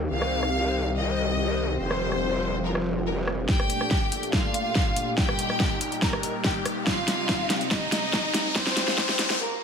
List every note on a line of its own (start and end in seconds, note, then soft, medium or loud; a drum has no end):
0.00 3.45 G3 medium
0.00 3.45 G4 medium
0.11 1.78 C2 medium
0.11 1.78 D#3 medium
0.11 3.45 C4 medium
0.11 0.87 F5 medium
0.22 cross-stick medium
0.43 cross-stick soft
0.95 1.72 D#5 medium
1.80 3.47 F1 medium
1.80 3.47 F3 medium
1.80 2.56 C5 medium
1.91 cross-stick medium
2.12 cross-stick soft
2.64 2.72 A#4 medium
2.75 cross-stick medium
3.06 3.14 A#4 medium
3.27 cross-stick medium
3.48 6.83 A#2 medium
3.48 5.16 A3 medium
3.48 5.16 D4 medium
3.48 4.25 G4 medium
3.48 9.36 G4 medium
3.48 4.25 G5 loud
3.48 kick loud
3.48 snare soft
3.48 riser medium
3.60 cross-stick medium
3.70 closed hi-hat medium
3.81 cross-stick medium
3.91 kick medium
3.91 snare soft
4.12 closed hi-hat medium
4.23 closed hi-hat soft
4.33 5.10 F4 medium
4.33 5.09 F5 medium
4.33 kick loud
4.33 snare medium
4.54 closed hi-hat medium
4.75 kick medium
4.75 snare medium
4.96 closed hi-hat medium
5.17 9.36 G3 medium
5.17 6.85 D#4 medium
5.17 5.94 G4 medium
5.17 5.94 G5 medium
5.17 kick medium
5.17 snare medium
5.29 cross-stick medium
5.39 closed hi-hat medium
5.50 cross-stick medium
5.60 kick loud
5.60 snare medium
5.81 closed hi-hat medium
5.92 closed hi-hat soft
6.02 6.29 A#4 medium
6.02 6.10 A#5 medium
6.02 kick loud
6.02 snare medium
6.13 cross-stick medium
6.23 closed hi-hat medium
6.44 6.72 G4 medium
6.44 6.52 G5 medium
6.44 kick loud
6.44 snare medium
6.66 cross-stick medium
6.66 closed hi-hat medium
6.86 9.38 C3 medium
6.86 8.54 D#4 medium
6.86 7.63 F4 medium
6.86 7.63 F5 loud
6.86 kick loud
6.86 snare medium
7.08 snare medium
7.08 closed hi-hat medium
7.29 kick loud
7.29 snare medium
7.50 snare medium
7.50 closed hi-hat medium
7.61 closed hi-hat soft
7.71 8.48 D#4 medium
7.71 8.48 D#5 medium
7.71 kick loud
7.71 snare medium
7.92 snare medium
7.92 closed hi-hat medium
8.13 kick medium
8.13 snare medium
8.34 snare medium
8.34 closed hi-hat medium
8.56 9.32 C4 medium
8.56 9.39 F4 medium
8.56 9.32 C5 medium
8.56 kick loud
8.56 snare medium
8.67 snare medium
8.77 snare medium
8.77 closed hi-hat medium
8.88 snare medium
8.98 kick loud
8.98 snare loud
9.09 snare medium
9.19 snare loud
9.19 closed hi-hat medium
9.30 snare medium
9.30 closed hi-hat soft
9.40 9.64 A#3 medium
9.40 9.48 A#4 medium